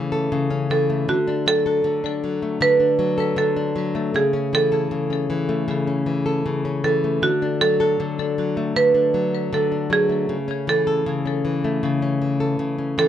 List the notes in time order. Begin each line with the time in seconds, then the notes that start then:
Already playing: C#3 E3 A3 C#4 A4
0.12 A4
0.32 C#3
0.50 C#4
0.70 E3 A4
0.90 A3
1.09 D3 F#4
1.27 D4
1.46 F#3 A4
1.66 A4
1.84 D3
2.04 D4
2.24 F#3
2.42 A3
2.61 D3 B4
2.80 D4
2.99 F#3
3.18 A4
3.36 D3 A4
3.56 D4
3.76 F#3
3.95 A3
4.14 C#3 G#4
4.33 C#4
4.53 E3 A4
4.72 A4
4.91 C#3
5.10 C#4
5.30 E3
5.49 A3
5.68 C#3
5.87 C#4
6.06 E3
6.26 A4
6.46 C#3
6.65 C#4
6.84 E3 A4
7.04 A3
7.22 D3 F#4
7.42 D4
7.61 F#3 A4
7.80 A4
8.00 D3
8.19 D4
8.38 F#3
8.57 A3
8.76 D3 B4
8.94 D4
9.14 F#3
9.53 D3 A4
9.72 D4
9.90 F#3 G#4
10.09 A3
10.29 C#3
10.48 C#4
10.67 E3 A4
10.87 A4
11.06 C#3
11.25 C#4
11.45 E3
11.64 A3
11.83 C#3
12.02 C#4
12.22 E3
12.40 A4
12.59 C#3
12.78 C#4
12.98 E3 A4